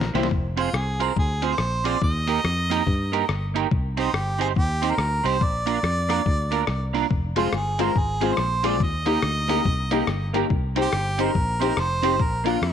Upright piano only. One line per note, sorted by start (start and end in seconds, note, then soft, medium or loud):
0.14 0.26 A#3 medium
0.14 0.26 C4 medium
0.14 0.27 E4 medium
7.36 7.48 G#3 medium
7.36 7.48 C4 medium
7.36 7.49 F4 loud
7.79 7.91 G#3 medium
7.79 7.91 C4 medium
7.79 7.91 F4 loud
8.21 8.33 G#3 medium
8.21 8.33 C4 medium
8.21 8.34 F4 loud
8.64 8.75 G#3 medium
8.64 8.76 C4 medium
8.64 8.76 F4 medium
9.06 9.18 A#3 medium
9.06 9.18 D#4 medium
9.06 9.18 G4 loud
9.49 9.60 A#3 medium
9.49 9.61 D#4 medium
9.49 9.61 G4 medium
9.91 10.03 A#3 loud
9.91 10.03 D#4 medium
9.91 10.04 G4 loud
10.34 10.45 A#3 medium
10.34 10.45 D#4 medium
10.34 10.46 G4 loud
10.76 10.88 C4 loud
10.76 10.88 D#4 medium
10.76 10.88 G4 loud
11.19 11.30 C4 medium
11.19 11.30 D#4 medium
11.19 11.31 G4 loud
11.61 11.72 C4 medium
11.61 11.73 D#4 medium
11.61 11.73 G4 loud
12.03 12.14 C4 medium
12.03 12.15 D#4 medium
12.03 12.15 G4 medium
12.45 12.57 A#3 medium
12.45 12.57 D4 medium
12.45 12.58 F4 loud